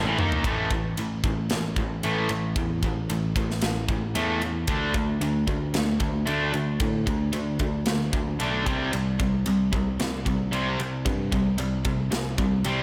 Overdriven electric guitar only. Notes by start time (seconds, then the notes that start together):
0.05 A2 E3
0.19 D#3 A#3 D#4
0.45 A2 E3 A3
0.71 A2 E3
0.98 A2 E3
1.25 A2 E3
1.52 A2 E3
1.78 A2 E3
2.04 A2 E3 A3
2.30 A2 E3
2.57 A2 E3
2.84 A2 E3
3.09 A2 E3
3.37 A2 E3
3.63 A2 E3
3.89 A2 E3
4.15 A2 E3 A3
4.41 A2 E3
4.68 D3 A3 D4
4.95 D3 A3
5.21 D3 A3
5.47 D3 A3
5.74 D3 A3
6.00 D3 A3
6.25 D3 A3 D4
6.53 D3 A3
6.81 D3 A3
7.07 D3 A3
7.33 D3 A3
7.60 D3 A3
7.86 D3 A3
8.12 D3 A3
8.39 D3 A3 D4
8.65 C3 G3 C4
8.93 C3 G3
9.19 C3 G3
9.46 C3 G3
9.72 C3 G3
10.00 C3 G3
10.25 C3 G3
10.51 C3 G3 C4
10.80 C3 G3
11.05 C3 G3
11.32 C3 G3
11.58 C3 G3
11.85 C3 G3
12.11 C3 G3
12.38 C3 G3
12.65 C3 G3 C4